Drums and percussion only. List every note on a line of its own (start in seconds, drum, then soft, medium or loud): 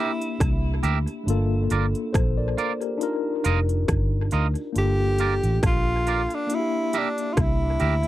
0.21 closed hi-hat soft
0.40 kick loud
0.40 cross-stick loud
0.40 closed hi-hat medium
0.83 closed hi-hat medium
1.07 closed hi-hat soft
1.28 closed hi-hat medium
1.70 closed hi-hat medium
1.95 closed hi-hat soft
2.14 kick loud
2.14 cross-stick loud
2.14 closed hi-hat medium
2.58 closed hi-hat medium
2.81 closed hi-hat soft
3.01 closed hi-hat medium
3.44 closed hi-hat medium
3.69 closed hi-hat soft
3.88 kick loud
3.88 cross-stick loud
3.88 closed hi-hat medium
4.31 closed hi-hat medium
4.55 closed hi-hat soft
4.76 closed hi-hat medium
5.18 closed hi-hat medium
5.43 closed hi-hat soft
5.63 kick loud
5.63 cross-stick loud
5.63 closed hi-hat medium
6.07 closed hi-hat medium
6.30 closed hi-hat soft
6.50 closed hi-hat medium
6.93 closed hi-hat medium
7.18 closed hi-hat soft
7.37 kick loud
7.37 cross-stick loud
7.37 closed hi-hat medium
7.80 closed hi-hat medium
8.03 closed hi-hat soft